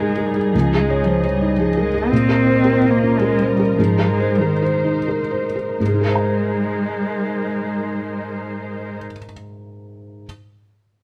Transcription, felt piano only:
0.00 0.50 G#2 soft
0.00 0.11 D#4 soft
0.00 0.36 G#4 soft
0.00 0.17 A#4 soft
0.17 0.36 A#4 soft
0.36 0.54 G#4 soft
0.55 2.08 C#2 soft
0.73 1.00 G#4 soft
0.90 1.18 C#5 soft
1.07 1.25 C5 soft
1.24 1.52 C#5 soft
1.42 1.69 D#4 soft
1.60 1.87 G#4 soft
1.77 1.94 A#4 soft
1.94 2.11 G#4 soft
2.12 3.75 A#2 soft
2.29 2.58 A#4 soft
2.46 2.76 C5 soft
2.65 2.83 A#4 soft
2.84 3.14 C5 soft
3.03 3.33 C#4 soft
3.22 3.52 A#4 soft
3.40 3.59 C5 soft
3.59 3.79 A#4 soft
3.78 5.76 G#2 soft
3.99 4.31 A#4 soft
4.20 4.53 C5 soft
4.41 4.62 A#4 soft
4.62 4.98 C5 soft
4.84 5.21 D#4 soft
5.08 5.46 A#4 soft
5.31 5.55 C5 soft
5.56 5.80 A#4 soft
5.80 8.97 G#2 soft
5.87 9.05 G#3 soft
5.94 9.11 D#4 soft
6.01 9.18 A#4 soft
6.07 9.25 C5 soft
6.15 9.33 A#5 soft

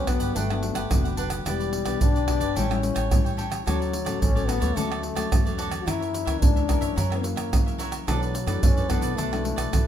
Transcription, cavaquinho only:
0.07 0.20 D4 soft
0.07 0.20 G4 medium
0.07 0.19 B4 soft
0.07 0.18 F#5 medium
0.20 0.34 G4 medium
0.20 0.34 B4 medium
0.20 0.33 F#5 medium
0.35 0.48 D4 medium
0.35 0.48 G4 medium
0.35 0.49 B4 medium
0.35 0.49 F#5 medium
0.50 0.61 G4 soft
0.50 0.62 B4 soft
0.50 0.62 F#5 medium
0.62 muted cavaquinho stroke soft
0.75 1.03 G4 medium
0.75 1.03 B4 medium
0.75 1.02 F#5 medium
1.04 1.16 G4 soft
1.04 1.17 B4 soft
1.04 1.17 F#5 soft
1.17 1.30 D4 medium
1.17 1.31 G4 medium
1.17 1.30 B4 medium
1.17 1.29 F#5 medium
1.30 1.45 G4 soft
1.30 1.44 B4 soft
1.30 1.44 F#5 soft
1.45 1.58 E4 medium
1.45 1.59 G4 medium
1.45 1.59 B4 medium
1.45 1.58 D5 medium
1.60 1.85 G4 soft
1.60 1.84 B4 soft
1.60 1.83 D5 medium
1.85 2.13 G4 medium
1.85 2.13 B4 medium
1.85 2.12 D5 medium
2.15 2.27 G4 soft
2.15 2.27 B4 soft
2.15 2.27 D5 soft
2.27 2.41 E4 soft
2.27 2.41 G4 soft
2.27 2.40 B4 medium
2.27 2.39 D5 soft
2.40 2.54 G4 soft
2.40 2.55 B4 medium
2.40 2.54 D5 medium
2.55 2.68 G4 medium
2.55 2.69 A4 medium
2.55 2.69 C#5 medium
2.55 2.69 G5 medium
2.70 2.82 A4 soft
2.70 2.82 C#5 soft
2.70 2.82 G5 soft
2.82 muted cavaquinho stroke soft
2.94 3.23 A4 soft
2.94 3.23 C#5 medium
2.94 3.23 G5 medium
3.25 3.36 A4 soft
3.25 3.37 C#5 soft
3.25 3.37 G5 soft
3.37 3.51 G4 medium
3.37 3.50 A4 medium
3.37 3.49 C#5 medium
3.37 3.48 G5 medium
3.50 3.65 A4 soft
3.50 3.64 C#5 soft
3.50 3.64 G5 soft
3.66 3.79 F#4 medium
3.66 3.79 A4 medium
3.66 3.79 C#5 medium
3.66 3.79 D5 medium
3.80 4.05 A4 soft
3.80 4.04 D5 soft
4.05 4.34 A4 medium
4.05 4.33 C#5 medium
4.05 4.33 D5 medium
4.35 4.46 A4 soft
4.35 4.47 C#5 soft
4.35 4.48 D5 soft
4.47 4.61 F#4 soft
4.47 4.60 A4 medium
4.47 4.60 C#5 soft
4.47 4.59 D5 medium
4.60 4.75 A4 medium
4.60 4.75 C#5 medium
4.60 4.74 D5 medium
4.76 4.89 F#4 medium
4.76 4.90 A4 medium
4.76 4.90 C#5 medium
4.76 4.89 D5 medium
4.90 5.02 A4 soft
4.90 5.02 C#5 soft
4.90 5.02 D5 medium
5.02 muted cavaquinho stroke soft
5.15 5.44 A4 soft
5.15 5.44 C#5 medium
5.15 5.43 D5 medium
5.46 5.57 A4 soft
5.46 5.58 C#5 soft
5.46 5.58 D5 soft
5.58 5.71 F#4 medium
5.58 5.71 A4 medium
5.58 5.70 C#5 medium
5.58 5.69 D5 medium
5.71 5.86 A4 soft
5.71 5.85 C#5 soft
5.71 5.85 D5 medium
5.86 5.99 F#4 medium
5.86 6.00 A#4 medium
5.86 6.00 C#5 medium
5.86 5.99 E5 medium
6.00 6.26 A#4 soft
6.00 6.25 C#5 soft
6.00 6.24 E5 medium
6.25 6.54 A#4 soft
6.25 6.54 C#5 medium
6.25 6.53 E5 medium
6.56 6.67 A#4 soft
6.56 6.68 C#5 soft
6.56 6.68 E5 medium
6.68 6.82 F#4 medium
6.68 6.81 A#4 soft
6.68 6.81 C#5 medium
6.68 6.80 E5 soft
6.81 6.95 A#4 medium
6.81 6.95 C#5 medium
6.81 6.95 E5 medium
6.96 7.09 F#4 medium
6.96 7.10 A#4 medium
6.96 7.10 C#5 medium
6.96 7.09 E5 medium
7.10 7.22 A#4 soft
7.10 7.23 C#5 soft
7.10 7.23 E5 medium
7.23 muted cavaquinho stroke soft
7.36 7.65 A#4 medium
7.36 7.64 C#5 medium
7.36 7.64 E5 medium
7.66 7.78 A#4 soft
7.66 7.79 C#5 soft
7.66 7.79 E5 soft
7.78 7.92 F#4 medium
7.78 7.92 A#4 medium
7.78 7.91 C#5 medium
7.78 7.90 E5 medium
7.91 8.06 A#4 soft
7.91 8.06 C#5 soft
7.91 8.05 E5 soft
8.07 8.20 D4 medium
8.07 8.21 A4 medium
8.07 8.21 B4 medium
8.07 8.21 D5 medium
8.22 8.47 A4 soft
8.22 8.46 B4 soft
8.22 8.45 D5 soft
8.47 8.75 A4 medium
8.47 8.75 B4 medium
8.47 8.74 D5 medium
8.77 8.88 A4 soft
8.77 8.89 B4 soft
8.77 8.89 D5 medium
8.89 9.02 D4 medium
8.89 9.02 A4 soft
8.89 9.01 B4 medium
8.89 9.00 D5 medium
9.01 9.16 A4 medium
9.01 9.16 B4 medium
9.01 9.15 D5 medium
9.17 9.30 D4 medium
9.17 9.31 A4 medium
9.17 9.31 B4 medium
9.17 9.30 D5 medium
9.31 9.43 A4 soft
9.31 9.43 B4 soft
9.31 9.43 D5 medium
9.44 muted cavaquinho stroke soft
9.56 9.85 A4 soft
9.56 9.85 B4 medium
9.56 9.84 D5 medium

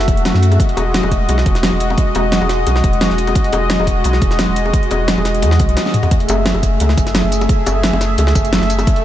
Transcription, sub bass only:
0.08 0.33 E1 medium
0.34 0.58 F#2 medium
0.77 1.02 E1 loud
1.03 1.27 E1 medium
1.29 1.44 B1 medium
1.46 1.71 E1 loud
1.72 1.97 E1 medium
2.15 2.40 E1 medium
2.41 2.65 E1 medium
2.67 2.82 B1 medium
2.84 3.09 E1 loud
3.10 3.34 E1 medium
3.53 3.78 E1 loud
3.79 4.03 E1 loud
4.05 4.20 B1 medium
4.22 4.47 E1 loud
4.48 4.72 E1 medium
4.91 5.16 E1 loud
5.17 5.44 E1 medium
5.42 5.61 E2 loud
5.60 5.77 B1 medium
6.28 6.54 F#1 loud
6.55 6.79 F#1 medium
6.80 6.96 C#2 medium
6.98 7.23 F#1 loud
7.24 7.48 F#1 medium
7.67 7.92 F#1 loud
7.93 8.17 F#1 medium
8.18 8.34 C#2 medium
8.36 8.60 F#1 loud
8.62 8.86 F#1 medium

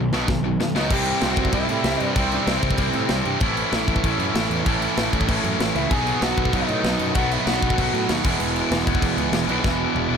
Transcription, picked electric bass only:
0.00 0.12 B1 medium
0.12 0.27 B1 medium
0.28 0.42 B1 medium
0.42 0.58 B1 medium
0.59 0.74 B1 medium
0.74 0.91 C#2 medium
0.91 1.12 C2 medium
1.22 1.32 C2 medium
1.37 1.48 C2 medium
1.53 1.64 C2 loud
1.69 1.79 A2 medium
1.84 1.95 C2 loud
2.01 2.11 G2 medium
2.16 2.37 C2 medium
2.47 2.57 C2 loud
2.63 2.73 C2 loud
2.78 2.89 C2 loud
2.94 3.04 A2 medium
3.10 3.20 C2 loud
3.26 3.36 G2 medium
3.41 3.62 A1 medium
3.72 3.83 A1 medium
3.88 3.98 A1 medium
4.03 4.14 A1 loud
4.18 4.29 F#2 loud
4.34 4.45 A1 medium
4.50 4.60 E2 medium
4.66 4.86 A1 medium
4.97 5.08 A1 medium
5.13 5.23 A1 medium
5.29 5.39 A1 loud
5.44 5.54 F#2 medium
5.59 5.70 A1 medium
5.75 5.85 C#2 medium
5.90 6.11 B1 medium
6.22 6.32 B1 loud
6.37 6.48 B1 medium
6.53 6.63 B1 medium
6.70 6.80 A2 medium
6.84 6.94 B1 loud
7.00 7.10 F#2 medium
7.15 7.36 B1 medium
7.46 7.57 B1 medium
7.62 7.72 B1 medium
7.78 7.88 B1 medium
7.94 8.04 A2 medium
8.09 8.20 D#2 loud
8.25 8.35 E1 medium
8.41 8.61 E1 medium
8.71 8.82 E1 loud
8.87 8.97 E1 medium
9.02 9.12 E1 loud
9.17 9.28 C#2 medium
9.32 9.43 E1 loud
9.47 9.58 B1 medium
9.64 9.85 E1 medium
9.95 10.06 E1 medium
10.11 10.17 E1 medium

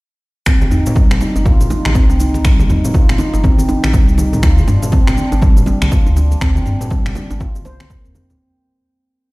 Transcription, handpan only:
0.46 0.60 C4 medium
0.71 0.85 D#4 medium
0.96 1.09 G3 medium
1.21 1.34 D#4 medium
1.45 1.59 F4 medium
1.70 1.78 D#4 medium
1.95 2.08 C4 medium
2.20 2.33 D#4 medium
2.45 2.58 G3 medium
2.69 2.83 D#4 medium
2.94 3.08 F4 medium
3.19 3.27 D#4 medium
3.44 3.57 C4 medium
3.68 3.82 D#4 medium
3.93 4.07 G3 medium
4.18 4.32 D#4 medium
4.43 4.56 F4 medium
4.68 4.76 D4 medium
4.92 5.06 C4 medium
5.17 5.31 D4 medium
5.42 5.56 G3 medium
5.67 5.80 D4 medium
5.92 6.05 F4 medium
6.17 6.25 D4 medium
6.41 6.55 C4 medium
6.66 6.80 D4 medium
6.91 7.04 G3 medium
7.16 7.29 D4 medium
7.41 7.54 F4 medium
7.65 7.79 C5 medium
7.90 8.04 A#3 medium
8.05 8.14 C4 medium
8.15 8.29 C4 medium
8.30 8.39 C4 medium

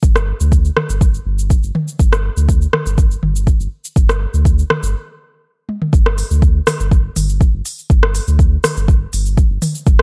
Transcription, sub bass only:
0.03 0.33 G1 loud
0.40 0.70 D2 medium
0.89 1.19 G1 medium
1.26 1.55 G1 medium
1.64 1.71 G1 loud
2.00 2.29 G1 loud
2.37 2.66 D2 medium
2.86 3.15 G1 medium
3.22 3.52 G1 medium
3.60 3.67 G1 loud
3.96 4.26 G1 loud
4.34 4.63 D2 medium
4.83 4.95 G1 medium
5.93 6.23 G1 loud
6.31 6.60 D2 medium
6.80 7.09 G1 medium
7.16 7.46 G1 medium
7.54 7.61 G1 loud
7.90 8.20 G1 loud
8.28 8.57 D2 medium
8.77 9.06 G1 medium
9.13 9.43 G1 medium
9.50 9.58 G1 loud
9.87 10.02 G1 loud

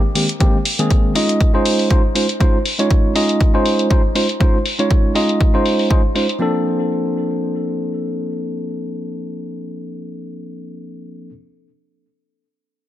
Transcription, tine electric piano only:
0.15 0.26 D#3 medium
0.15 0.26 G#3 medium
0.15 0.26 A#3 medium
0.15 0.26 C4 medium
0.15 0.26 G4 medium
0.40 0.57 D#3 medium
0.40 0.57 G#3 medium
0.40 0.57 A#3 medium
0.40 0.57 C4 medium
0.40 0.57 G4 loud
0.79 1.12 D#3 medium
0.79 1.13 G#3 medium
0.79 1.13 A#3 medium
0.79 1.13 C4 medium
0.79 1.13 G#4 medium
1.15 1.51 G#3 medium
1.15 1.51 C#4 medium
1.15 1.51 D#4 medium
1.15 1.51 F4 medium
1.15 1.51 D#5 medium
1.54 1.87 G#3 medium
1.54 1.88 C#4 medium
1.54 1.88 D#4 medium
1.54 1.88 F4 medium
1.54 1.88 C5 loud
1.90 2.01 G#3 medium
1.90 2.01 C#4 medium
1.90 2.01 D#4 medium
1.90 2.01 F4 medium
1.90 2.01 C5 medium
2.15 2.26 G#3 medium
2.15 2.26 C#4 medium
2.15 2.26 D#4 medium
2.15 2.26 F4 medium
2.15 2.26 C5 medium
2.40 2.56 G#3 medium
2.40 2.57 C#4 medium
2.40 2.57 D#4 medium
2.40 2.57 F4 medium
2.40 2.57 C5 loud
2.79 3.12 G#3 medium
2.79 3.13 C#4 medium
2.79 3.13 D#4 medium
2.79 3.13 F4 medium
2.79 3.13 C#5 medium
3.15 3.51 G#3 medium
3.15 3.51 C#4 medium
3.15 3.51 D#4 medium
3.15 3.51 F4 medium
3.15 3.51 D#5 medium
3.54 3.87 G#3 medium
3.54 3.88 C#4 medium
3.54 3.88 D#4 medium
3.54 3.88 F4 medium
3.54 3.88 C5 loud
3.90 4.01 G#3 medium
3.90 4.01 C#4 medium
3.90 4.01 D#4 medium
3.90 4.01 F4 medium
3.90 4.01 C5 medium
4.15 4.26 G#3 medium
4.15 4.26 C#4 medium
4.15 4.26 D#4 medium
4.15 4.26 F4 medium
4.15 4.26 C5 medium
4.40 4.57 G#3 medium
4.40 4.57 C#4 medium
4.40 4.57 D#4 medium
4.40 4.57 F4 medium
4.40 4.57 C5 loud
4.79 5.12 G#3 medium
4.79 5.13 C#4 medium
4.79 5.13 D#4 medium
4.79 5.13 F4 medium
4.79 5.13 C#5 medium
5.15 5.51 G#3 medium
5.15 5.51 C#4 medium
5.15 5.51 D#4 medium
5.15 5.51 F4 medium
5.15 5.51 D#5 medium
5.54 5.87 G#3 medium
5.54 5.88 C#4 medium
5.54 5.88 D#4 medium
5.54 5.88 F4 medium
5.54 5.88 C5 loud
5.90 6.01 G#3 medium
5.90 6.01 C#4 medium
5.90 6.01 D#4 medium
5.90 6.01 F4 medium
5.90 6.01 C5 medium
6.15 6.26 G#3 medium
6.15 6.26 C#4 medium
6.15 6.26 D#4 medium
6.15 6.26 F4 medium
6.15 6.26 C5 medium
6.39 11.29 F3 medium
6.39 11.30 A#3 medium
6.39 11.31 C4 medium
6.39 11.32 D4 medium
6.39 11.32 A4 medium

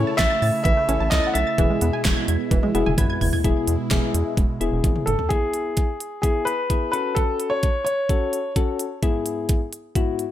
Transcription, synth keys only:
0.00 0.30 C#4 medium
0.00 0.30 E4 medium
0.00 0.30 A4 medium
0.89 1.03 C#4 medium
0.89 1.03 E4 medium
0.89 1.03 A4 medium
1.12 1.41 C#4 medium
1.12 1.41 E4 medium
1.12 1.41 A4 medium
1.58 2.16 B3 medium
1.58 2.16 E4 medium
1.58 2.16 G#4 medium
2.75 2.89 B3 medium
2.75 2.89 E4 medium
2.75 2.89 G#4 loud
2.98 3.27 B3 medium
2.98 3.27 E4 medium
2.98 3.27 B4 medium
3.44 3.73 B3 medium
3.44 3.73 E4 medium
3.44 3.73 G#4 loud
3.91 4.34 B3 medium
3.91 4.34 E4 medium
3.91 4.34 G#4 medium
4.61 5.04 B3 medium
4.61 5.04 E4 medium
4.61 5.04 G#4 medium
5.30 5.88 B3 medium
5.30 5.88 E4 medium
5.30 5.88 G#4 medium
6.23 6.52 B3 medium
6.23 6.52 E4 medium
6.23 6.52 G#4 medium
6.70 6.93 B3 medium
6.70 6.93 E4 medium
6.70 6.93 G#4 medium
6.93 7.68 C#4 medium
6.93 7.68 F#4 medium
6.93 7.68 A4 medium
8.10 8.38 C#4 medium
8.10 8.38 F#4 medium
8.10 8.38 A4 medium
8.56 8.85 C#4 medium
8.56 8.85 F#4 medium
8.56 8.85 A4 medium
9.03 9.60 G#2 medium
9.03 9.60 B3 medium
9.03 9.60 E4 medium
9.03 9.60 G#4 medium
9.96 10.24 G#2 medium
9.96 10.24 B3 medium
9.96 10.24 E4 medium
9.96 10.24 F#4 medium

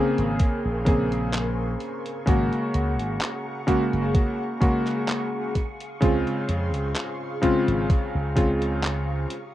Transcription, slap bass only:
0.18 0.36 G#1 medium
0.65 1.75 A#1 medium
2.27 2.49 G#1 medium
2.74 3.00 C#2 medium
3.00 3.18 G#1 medium
3.93 4.11 F#1 loud
6.02 6.23 C#2 medium
6.49 6.74 F2 medium
6.74 6.92 C#2 medium
7.68 7.86 G#1 loud
8.15 9.25 C#2 loud

